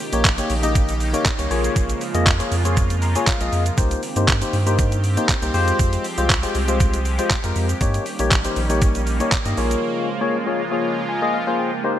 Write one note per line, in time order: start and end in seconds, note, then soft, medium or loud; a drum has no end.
0.00 3.74 C#3 medium
0.00 1.47 D#3 medium
0.00 5.50 A#3 medium
0.00 1.49 D#4 medium
0.00 1.49 G4 medium
0.00 open hi-hat medium
0.00 shaker medium
0.13 0.40 A#1 medium
0.13 0.27 A#3 medium
0.13 0.27 D#4 medium
0.13 0.27 G4 medium
0.13 0.27 C#5 loud
0.13 closed hi-hat medium
0.13 shaker medium
0.25 kick loud
0.25 clap loud
0.25 closed hi-hat medium
0.25 shaker medium
0.38 0.52 A#3 medium
0.38 0.52 D#4 medium
0.38 0.53 G4 medium
0.38 0.53 C#5 loud
0.38 closed hi-hat medium
0.38 shaker medium
0.50 1.14 A#1 loud
0.50 open hi-hat medium
0.50 shaker medium
0.63 0.93 A#3 medium
0.63 0.93 D#4 medium
0.63 0.93 G4 medium
0.63 0.93 D#5 loud
0.63 closed hi-hat medium
0.63 shaker medium
0.75 kick loud
0.75 closed hi-hat medium
0.75 shaker medium
0.88 closed hi-hat soft
0.88 shaker medium
0.88 shaker soft
1.00 open hi-hat medium
1.00 shaker soft
1.00 shaker medium
1.13 1.28 A#3 medium
1.13 1.28 D#4 medium
1.13 1.28 G4 medium
1.13 1.28 C#5 loud
1.13 closed hi-hat medium
1.13 shaker medium
1.25 kick loud
1.25 clap loud
1.25 closed hi-hat medium
1.25 shaker medium
1.39 1.47 C2 medium
1.39 1.49 A#3 medium
1.39 1.51 D#4 medium
1.39 1.51 G4 medium
1.39 1.50 C#5 loud
1.39 closed hi-hat medium
1.39 shaker medium
1.50 1.69 A#1 loud
1.50 3.75 F3 medium
1.50 3.75 G#3 medium
1.50 2.01 A#3 loud
1.50 2.01 F4 medium
1.50 3.76 F4 medium
1.50 2.01 G#4 medium
1.50 2.01 C#5 loud
1.50 open hi-hat medium
1.50 shaker medium
1.64 closed hi-hat medium
1.64 shaker soft
1.64 shaker medium
1.76 1.94 A#1 loud
1.76 kick loud
1.76 closed hi-hat medium
1.76 shaker medium
1.89 closed hi-hat soft
1.89 shaker soft
1.89 shaker medium
2.01 open hi-hat medium
2.01 shaker medium
2.14 2.41 F2 medium
2.14 2.29 A#3 medium
2.14 2.29 F4 medium
2.14 2.29 G#4 medium
2.14 2.29 D#5 loud
2.14 closed hi-hat medium
2.14 shaker soft
2.14 shaker medium
2.26 kick loud
2.26 clap loud
2.26 closed hi-hat medium
2.26 shaker medium
2.39 2.54 A#3 medium
2.39 2.54 F4 medium
2.39 2.54 G#4 medium
2.39 2.54 C#5 loud
2.39 closed hi-hat medium
2.39 shaker medium
2.52 3.16 F2 medium
2.52 open hi-hat medium
2.52 shaker medium
2.65 2.94 A#3 medium
2.65 2.94 F4 medium
2.65 2.95 G#4 medium
2.65 2.95 C#5 medium
2.65 closed hi-hat medium
2.65 shaker medium
2.77 kick loud
2.77 closed hi-hat medium
2.77 shaker medium
2.90 closed hi-hat soft
2.90 shaker medium
2.90 shaker soft
3.02 3.15 A#5 medium
3.02 open hi-hat medium
3.02 shaker soft
3.02 shaker medium
3.15 3.30 A#3 medium
3.15 3.30 F4 medium
3.15 3.30 G#4 medium
3.15 3.30 C#5 medium
3.15 3.27 G#5 medium
3.15 closed hi-hat medium
3.15 shaker soft
3.15 shaker medium
3.27 3.74 F5 medium
3.27 kick loud
3.27 clap loud
3.27 closed hi-hat medium
3.27 shaker medium
3.41 3.49 A#1 medium
3.41 3.63 A#3 medium
3.41 3.63 F4 medium
3.41 3.63 G#4 medium
3.41 3.63 D#5 medium
3.41 closed hi-hat medium
3.41 shaker soft
3.41 shaker medium
3.52 3.71 F2 loud
3.52 open hi-hat medium
3.52 shaker medium
3.66 closed hi-hat medium
3.66 shaker soft
3.66 shaker medium
3.78 3.96 C2 loud
3.78 5.52 D#3 medium
3.78 4.00 A#3 medium
3.78 7.77 C4 medium
3.78 4.00 D#4 medium
3.78 9.54 G4 medium
3.78 4.00 G4 medium
3.78 4.00 C5 loud
3.78 kick loud
3.78 closed hi-hat medium
3.78 shaker medium
3.91 closed hi-hat soft
3.91 shaker soft
3.91 shaker medium
4.03 open hi-hat medium
4.03 shaker medium
4.16 4.43 G2 medium
4.16 4.31 A#3 medium
4.16 4.31 D#4 medium
4.16 4.31 G4 medium
4.16 4.31 C5 loud
4.16 closed hi-hat medium
4.16 shaker medium
4.28 kick loud
4.28 clap loud
4.28 closed hi-hat medium
4.28 shaker medium
4.41 4.56 A#3 medium
4.41 4.56 D#4 medium
4.41 4.56 G4 medium
4.41 4.56 C5 medium
4.41 closed hi-hat medium
4.41 shaker medium
4.53 5.18 G2 medium
4.53 open hi-hat medium
4.53 shaker medium
4.66 4.96 A#3 medium
4.66 4.96 D#4 medium
4.66 4.96 G4 medium
4.66 4.96 C5 medium
4.66 closed hi-hat medium
4.66 shaker medium
4.78 kick loud
4.78 closed hi-hat medium
4.78 shaker medium
4.92 closed hi-hat medium
4.92 shaker medium
4.92 shaker soft
5.04 open hi-hat medium
5.04 shaker soft
5.04 shaker medium
5.17 5.31 A#3 medium
5.17 5.31 D#4 medium
5.17 5.32 G4 medium
5.17 5.32 C5 loud
5.17 closed hi-hat medium
5.17 shaker medium
5.29 kick loud
5.29 clap loud
5.29 closed hi-hat medium
5.29 shaker medium
5.42 5.51 C2 medium
5.42 5.54 A#3 medium
5.42 5.54 D#4 medium
5.42 5.53 G4 medium
5.42 5.53 C5 medium
5.42 closed hi-hat medium
5.42 shaker medium
5.54 5.72 F2 loud
5.54 7.79 F3 medium
5.54 6.04 G#3 loud
5.54 7.79 G#3 medium
5.54 6.04 F4 medium
5.54 6.05 G4 medium
5.54 6.05 C5 loud
5.54 open hi-hat medium
5.54 shaker medium
5.67 closed hi-hat medium
5.67 shaker soft
5.67 shaker medium
5.79 5.98 F2 loud
5.79 kick loud
5.79 closed hi-hat medium
5.79 shaker medium
5.93 closed hi-hat soft
5.93 shaker soft
5.93 shaker medium
6.04 open hi-hat medium
6.04 shaker medium
6.18 6.45 C2 medium
6.18 6.32 G#3 medium
6.18 6.32 F4 medium
6.18 6.32 G4 medium
6.18 6.32 C5 loud
6.18 closed hi-hat medium
6.18 shaker medium
6.30 kick loud
6.30 clap loud
6.30 closed hi-hat medium
6.30 shaker medium
6.43 6.57 G#3 medium
6.43 6.57 F4 medium
6.43 6.57 G4 medium
6.43 6.58 C5 loud
6.43 closed hi-hat medium
6.43 shaker medium
6.55 7.19 C2 medium
6.55 open hi-hat medium
6.55 shaker medium
6.68 6.98 G#3 medium
6.68 6.98 F4 medium
6.68 6.98 G4 medium
6.68 6.98 C5 loud
6.68 closed hi-hat medium
6.68 shaker medium
6.80 kick loud
6.80 closed hi-hat medium
6.80 shaker medium
6.94 closed hi-hat soft
6.94 shaker medium
6.94 shaker soft
7.05 open hi-hat medium
7.05 shaker soft
7.05 shaker medium
7.19 7.33 G#3 medium
7.19 7.33 F4 medium
7.19 7.33 G4 medium
7.19 7.33 C5 loud
7.19 closed hi-hat medium
7.19 shaker soft
7.19 shaker medium
7.30 kick loud
7.30 clap loud
7.30 closed hi-hat medium
7.30 shaker medium
7.43 7.53 F2 medium
7.43 7.66 G#3 medium
7.43 7.66 F4 medium
7.43 7.66 G4 medium
7.43 7.66 A#4 medium
7.43 closed hi-hat medium
7.43 shaker medium
7.56 7.74 F2 loud
7.56 open hi-hat medium
7.56 shaker medium
7.69 closed hi-hat medium
7.69 shaker soft
7.69 shaker medium
7.81 7.99 G2 loud
7.81 9.56 D#3 medium
7.81 9.56 G3 medium
7.81 8.03 A#3 medium
7.81 11.80 A#3 medium
7.81 9.56 C#4 medium
7.81 8.03 D#4 medium
7.81 8.04 G4 medium
7.81 8.04 C#5 loud
7.81 kick loud
7.81 closed hi-hat medium
7.81 shaker medium
7.94 closed hi-hat soft
7.94 shaker soft
8.06 open hi-hat medium
8.06 shaker medium
8.19 8.46 A#1 medium
8.19 8.34 A#3 medium
8.19 8.34 D#4 medium
8.19 8.34 G4 medium
8.19 8.34 C#5 loud
8.19 closed hi-hat medium
8.19 shaker medium
8.31 kick loud
8.31 clap loud
8.31 closed hi-hat medium
8.31 shaker medium
8.44 8.59 A#3 medium
8.44 8.59 D#4 medium
8.44 8.59 G4 medium
8.44 8.59 C5 loud
8.44 closed hi-hat medium
8.44 shaker medium
8.56 9.21 A#1 loud
8.56 open hi-hat medium
8.56 shaker medium
8.70 8.99 A#3 medium
8.70 8.99 D#4 medium
8.70 9.00 G4 medium
8.70 9.00 C#5 loud
8.70 closed hi-hat medium
8.70 shaker medium
8.82 kick loud
8.82 closed hi-hat medium
8.82 shaker medium
8.95 closed hi-hat soft
8.95 shaker soft
8.95 shaker medium
9.07 open hi-hat medium
9.07 shaker soft
9.07 shaker medium
9.20 9.35 A#3 medium
9.20 9.35 D#4 medium
9.20 9.35 G4 medium
9.20 9.35 C#5 loud
9.20 closed hi-hat medium
9.20 shaker soft
9.20 shaker medium
9.32 kick loud
9.32 clap loud
9.32 closed hi-hat medium
9.32 shaker medium
9.45 9.54 G2 loud
9.45 9.56 A#3 medium
9.45 9.57 D#4 medium
9.45 9.57 G4 medium
9.45 9.57 D#5 medium
9.45 closed hi-hat medium
9.45 shaker medium
9.57 9.76 A#1 loud
9.57 11.82 C#3 medium
9.57 11.82 F3 medium
9.57 11.82 G#3 medium
9.57 10.08 A#3 loud
9.57 10.08 F4 medium
9.57 11.82 F4 medium
9.57 10.08 G#4 medium
9.57 10.08 C#5 loud
9.57 open hi-hat medium
9.57 shaker medium
9.71 closed hi-hat medium
9.71 shaker soft
9.71 shaker medium
10.21 10.35 A#3 medium
10.21 10.35 F4 medium
10.21 10.36 G#4 medium
10.21 10.36 C#5 loud
10.46 10.61 A#3 medium
10.46 10.61 F4 medium
10.46 10.61 G#4 medium
10.46 10.61 C#5 medium
10.71 11.01 A#3 medium
10.71 11.01 F4 medium
10.71 11.01 G#4 medium
10.71 11.01 C#5 loud
11.09 11.32 G#5 medium
11.22 11.36 A#3 medium
11.22 11.36 F4 medium
11.22 11.36 G#4 medium
11.22 11.37 D#5 loud
11.34 11.57 F5 medium
11.47 11.69 A#3 medium
11.47 11.69 F4 medium
11.47 11.69 G#4 medium
11.47 11.70 C5 medium
11.59 11.83 G5 medium
11.84 11.99 D#3 medium
11.84 11.99 A#3 medium
11.84 11.99 C4 medium
11.84 11.99 D#4 medium
11.84 11.99 G4 medium
11.84 11.99 C5 loud